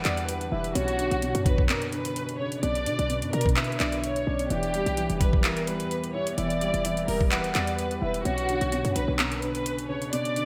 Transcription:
Already playing: ambient pad E3 D4 G4, grand piano E3 G3 E4, soft synth lead F#5
0.05 808-style bass E2, grand piano G3, violin section D5, clap, closed hi-hat
0.17 closed hi-hat
0.29 violin section B4, closed hi-hat
0.41 closed hi-hat
0.52 808-style bass E1, grand piano E4, violin section B4, soft synth lead E5
0.64 closed hi-hat
0.75 808-style bass B1, grand piano B2, ambient pad B2 C#4 B4, violin section F#4, soft synth lead C#5, closed hi-hat
0.88 closed hi-hat
0.99 grand piano D3, closed hi-hat
1.11 808-style bass B1, closed hi-hat
1.22 grand piano B2, closed hi-hat
1.35 808-style bass F#2, closed hi-hat
1.46 grand piano D3, violin section B4, kick, closed hi-hat
1.58 kick
1.69 grand piano B2, violin section A#4, clap, closed hi-hat
1.82 closed hi-hat
1.92 grand piano D3, violin section B4, closed hi-hat
2.05 closed hi-hat
2.16 closed hi-hat
2.29 closed hi-hat
2.39 grand piano C#3, violin section C#5
2.52 closed hi-hat
2.63 808-style bass B1, grand piano B2, ambient pad B3, violin section D5, soft synth lead D5, closed hi-hat
2.75 closed hi-hat
2.86 808-style bass B2, grand piano D3, closed hi-hat
2.99 808-style bass B1, closed hi-hat
3.10 grand piano B2, closed hi-hat
3.22 808-style bass F#2, closed hi-hat
3.33 808-style bass B2, grand piano D3, violin section A#4, closed hi-hat
3.41 closed hi-hat
3.46 kick, closed hi-hat
3.56 grand piano B2, violin section B4, soft synth lead E5, clap, closed hi-hat
3.64 closed hi-hat
3.72 closed hi-hat
3.80 808-style bass B1, grand piano D3, violin section D5, clap, closed hi-hat
3.92 closed hi-hat
4.04 violin section C#5, closed hi-hat
4.16 closed hi-hat
4.27 808-style bass B1, grand piano C#4, soft synth lead D5
4.39 closed hi-hat
4.50 808-style bass E1, ambient pad E3 G4, grand piano E3, violin section G4, soft synth lead D5, closed hi-hat
4.63 closed hi-hat
4.74 grand piano G3, closed hi-hat
4.86 808-style bass B1, closed hi-hat
4.97 grand piano E3, closed hi-hat
5.10 808-style bass E1, closed hi-hat
5.20 grand piano G3, violin section B4, kick, closed hi-hat
5.33 kick
5.44 grand piano E3, violin section A#4, clap, closed hi-hat
5.57 closed hi-hat
5.67 grand piano G3, violin section B4, closed hi-hat
5.80 808-style bass E2, closed hi-hat
5.91 closed hi-hat
6.04 closed hi-hat
6.14 grand piano E4, violin section C#5
6.27 closed hi-hat
6.38 808-style bass E1, grand piano E3, violin section D5, soft synth lead E5, closed hi-hat
6.50 closed hi-hat
6.61 grand piano G3, closed hi-hat
6.74 808-style bass E1, closed hi-hat
6.85 grand piano E3, closed hi-hat
6.97 closed hi-hat
7.08 808-style bass E1, grand piano G3, violin section A#4, open hi-hat
7.21 kick
7.32 grand piano E3, violin section B4, soft synth lead F#5, clap, closed hi-hat
7.44 closed hi-hat
7.55 808-style bass E2, grand piano G3, violin section D5, clap, closed hi-hat
7.67 closed hi-hat
7.79 violin section B4, closed hi-hat
7.91 closed hi-hat
8.02 808-style bass E1, grand piano E4, violin section B4, soft synth lead E5
8.14 closed hi-hat
8.25 808-style bass B1, ambient pad B2 C#4 B4, grand piano B2, violin section F#4, soft synth lead C#5, closed hi-hat
8.38 closed hi-hat
8.49 grand piano D3, closed hi-hat
8.61 808-style bass B1, closed hi-hat
8.72 grand piano B2, closed hi-hat
8.85 808-style bass F#2, closed hi-hat
8.96 808-style bass B1, grand piano D3, violin section B4, closed hi-hat
9.08 808-style bass B1
9.19 grand piano B2, violin section A#4, clap, closed hi-hat
9.32 closed hi-hat
9.42 grand piano D3, violin section B4, closed hi-hat
9.55 closed hi-hat
9.66 closed hi-hat
9.79 closed hi-hat
9.90 grand piano C#3, violin section C#5
10.02 808-style bass C#2, closed hi-hat
10.13 grand piano B2, ambient pad B3, soft synth lead D5, violin section D5, closed hi-hat
10.25 closed hi-hat
10.36 grand piano D3, closed hi-hat

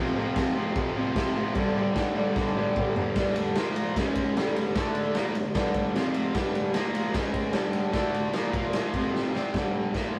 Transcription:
Already playing: overdriven electric guitar F2 C3 F3
0.17 overdriven electric guitar F2 C3 F3
0.36 overdriven electric guitar F2 C3 F3, kick, snare, crash
0.56 overdriven electric guitar F2 C3 F3
0.76 overdriven electric guitar F2 C3 F3, kick, crash
0.96 overdriven electric guitar F2 C3 F3
1.16 overdriven electric guitar F2 C3 F3, kick, snare, crash
1.36 overdriven electric guitar F2 C3 F3
1.54 overdriven electric guitar G2 D3 G3, kick, crash
1.75 overdriven electric guitar G2 D3 G3
1.94 overdriven electric guitar G2 D3 G3, kick, snare, crash
2.16 overdriven electric guitar G2 D3 G3
2.35 overdriven electric guitar G2 D3 G3, kick, snare
2.57 overdriven electric guitar G2 D3 G3
2.76 overdriven electric guitar G2 D3 G3, kick, mid tom
2.96 overdriven electric guitar G2 D3 G3, floor tom
3.16 overdriven electric guitar G2 D3 G3, kick, snare, ride
3.36 ride
3.55 overdriven electric guitar A#2 F3 A#3, snare, ride
3.76 ride
3.96 overdriven electric guitar C#3 G#3 C#4, kick, snare, ride
4.15 kick, ride
4.36 overdriven electric guitar G2 D3 G3, snare, ride
4.56 ride
4.75 overdriven electric guitar D3 A3 D4, kick, snare, ride
4.95 ride
5.15 overdriven electric guitar A#2 F3 A#3, snare, ride
5.35 overdriven electric guitar G2 D3, ride
5.55 overdriven electric guitar G2 D3 G3, kick, snare, ride
5.74 kick, ride
5.95 overdriven electric guitar F2 C3 F3, snare, ride
6.14 ride
6.34 overdriven electric guitar G2 D3 G3, kick, snare, ride
6.55 ride
6.74 overdriven electric guitar A#2 F3 A#3, snare, ride
6.95 ride
7.13 overdriven electric guitar C#3 G#3 C#4, kick, snare, ride
7.34 kick, ride
7.53 overdriven electric guitar G2 D3 G3, snare, ride
7.73 ride
7.92 overdriven electric guitar D3 A3 D4, kick, snare, ride
8.14 ride
8.33 overdriven electric guitar A#2 F3 A#3, snare, ride
8.53 overdriven electric guitar A#2 F3 A#3, kick, ride
8.73 snare, ride
8.94 overdriven electric guitar F2 C3 F3, kick, ride
9.15 snare
9.34 overdriven electric guitar C3 G3 C4, snare
9.54 overdriven electric guitar G2 D3 G3, kick, snare, crash
9.94 overdriven electric guitar A#2 F3 A#3, kick, snare, crash
10.15 muted overdriven electric guitar stroke

